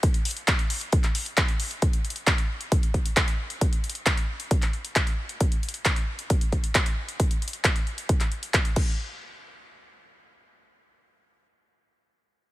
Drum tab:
CC |--------------------------------|--------------------------------|--------------------------------|--------------------------------|
HH |x-x-oxx-x-x-o-x-x-x-o-x-x-x-o-x-|x-x-xxx-x-x---x-x-x-x-x-x-x---x-|x-x-xxx-x-x---x-x-x-x-x-x-x---x-|x-x-xxx-x-x---x-x-x-x-x-x-x---x-|
CP |--------x---------x-----x-------|--------x---------------x-------|--------x---------x-----x-------|--------x---------------x-------|
BD |o-------o-------o-------o-------|o-------o-------o---o---o-------|o-------o-------o-------o-------|o-------o-------o---o---o-------|

CC |----------------------------x---|--------------------------------|--------------------------------|
HH |x-x-xxx-x-x-x-x-x-x-x-x-x-x-----|--------------------------------|--------------------------------|
CP |--------x---------x-----x-------|--------------------------------|--------------------------------|
BD |o-------o-------o-------o---o---|--------------------------------|--------------------------------|